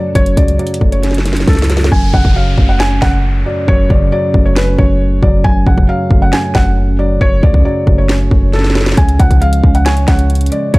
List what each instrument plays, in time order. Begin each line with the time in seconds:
Already playing: tine electric piano F#2 C#3 F#3 A3 C#4, ambient pad F#3 F#4 A4, felt piano D5
0.15 808-style bass F#1, tine electric piano F#2, felt piano C#5, kick, closed hi-hat
0.26 closed hi-hat
0.37 808-style bass C#2, tine electric piano C#3, felt piano D5, kick, closed hi-hat
0.48 closed hi-hat
0.59 tine electric piano F#3, felt piano D5, closed hi-hat
0.67 closed hi-hat
0.74 closed hi-hat
0.81 808-style bass F#1, tine electric piano A3, kick
0.92 felt piano C#5, closed hi-hat
1.03 tine electric piano C#4, snare, closed hi-hat
1.11 snare, closed hi-hat
1.18 snare
1.25 tine electric piano F#2, snare, closed hi-hat
1.33 snare, closed hi-hat
1.40 snare
1.47 808-style bass C#2, felt piano A4, kick, snare, closed hi-hat
1.53 snare, closed hi-hat
1.59 snare, closed hi-hat
1.64 closed hi-hat
1.70 tine electric piano F#3, snare, closed hi-hat
1.77 snare
1.84 snare
1.92 808-style bass F#1, tine electric piano F#2, felt piano G#5, kick, downlifter
2.14 808-style bass F#1, tine electric piano C#3, felt piano F#5, kick
2.25 kick
2.36 tine electric piano F#3, felt piano F5
2.58 808-style bass F#1, tine electric piano A3, kick
2.69 felt piano F#5
2.80 tine electric piano C#4, felt piano G#5, snare
3.02 808-style bass F#1, tine electric piano F#2, felt piano F#5, kick, snare
3.46 tine electric piano F#3, felt piano D5
3.68 808-style bass F#1, tine electric piano F#2, felt piano C#5, kick
3.90 808-style bass F#1, tine electric piano C#3, felt piano D5, kick
4.12 tine electric piano F#3, felt piano D5
4.34 808-style bass F#1, tine electric piano A3, kick
4.45 felt piano C#5
4.56 tine electric piano C#4, felt piano B4, snare
4.78 808-style bass F#1, tine electric piano F#2, felt piano C#5, kick
5.23 808-style bass F#1, tine electric piano F#3, felt piano D5, kick
5.44 808-style bass F#1, tine electric piano F#2, felt piano G#5, kick
5.67 808-style bass F#1, tine electric piano C#3, felt piano F#5, kick
5.78 kick
5.89 tine electric piano F#3, felt piano F5
6.11 808-style bass F#1, tine electric piano A3, kick
6.22 felt piano F#5
6.33 tine electric piano C#4, felt piano G#5, snare
6.55 808-style bass F#1, tine electric piano F#2, felt piano F#5, kick, snare
6.99 tine electric piano F#3, felt piano D5
7.21 808-style bass F#1, tine electric piano F#2, felt piano C#5, kick
7.43 808-style bass C#2, tine electric piano C#3, felt piano D5, kick
7.54 kick
7.65 tine electric piano F#3, felt piano D5
7.87 808-style bass F#1, tine electric piano A3, kick
7.98 felt piano C#5
8.09 tine electric piano C#4, snare
8.31 808-style bass F#1, tine electric piano F#2, kick
8.53 felt piano A4, snare
8.59 snare
8.64 snare
8.70 snare
8.75 tine electric piano F#3, snare
8.81 snare
8.86 snare
8.92 snare
8.97 808-style bass C#2, tine electric piano C#3, felt piano G#5, kick, closed hi-hat
9.09 closed hi-hat
9.19 808-style bass C#2, tine electric piano F3, felt piano F#5, kick, closed hi-hat
9.31 kick, closed hi-hat
9.42 tine electric piano G#3, felt piano F5, closed hi-hat
9.53 closed hi-hat
9.64 808-style bass C#2, tine electric piano C#4, kick
9.75 felt piano F#5, closed hi-hat
9.86 tine electric piano C#5, felt piano G#5, snare, closed hi-hat
9.97 closed hi-hat
10.08 808-style bass C#2, tine electric piano C#3, felt piano F#5, kick, snare, closed hi-hat
10.19 closed hi-hat
10.30 closed hi-hat
10.35 closed hi-hat
10.41 closed hi-hat
10.46 closed hi-hat
10.52 tine electric piano G#3, felt piano D5, closed hi-hat
10.74 808-style bass C#2, tine electric piano C#3, felt piano C#5, kick, closed hi-hat